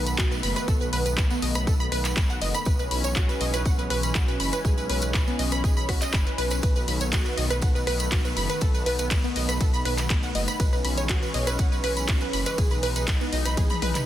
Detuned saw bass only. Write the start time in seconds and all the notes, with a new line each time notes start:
Already playing: B1
0.18 B1
0.43 F#1
0.68 B1
0.93 B1
1.06 B1
1.18 B1
1.42 B1
1.55 B1
1.67 B1
1.92 B1
2.17 B1
2.42 F#1
2.66 B1
2.91 B1
3.04 B1
3.16 B1
3.41 B1
3.54 B1
3.66 B1
3.90 B1
4.15 B1
4.40 F#1
4.65 B1
4.90 B1
5.03 B1
5.14 B1
5.39 B1
5.52 B1
5.64 B1
5.89 B1
6.14 F#1
6.38 B1
6.63 B1
6.88 B1
7.01 B1
7.13 B1
7.38 B1
7.51 B1
7.62 B1
7.87 B1
8.12 B1
8.37 F#1
8.61 B1
8.86 B1
8.99 B1
9.11 B1
9.36 B1
9.49 B1
9.61 B1
9.85 B1
10.10 B1
10.35 F#1
10.60 B1
10.85 B1
10.98 B1
11.09 B1
11.34 B1
11.47 B1
11.59 B1
11.84 B1
12.09 B1
12.33 F#1
12.58 B1
12.83 B1
12.96 B1
13.08 B1
13.33 B1
13.46 B1
13.57 B1
13.82 B1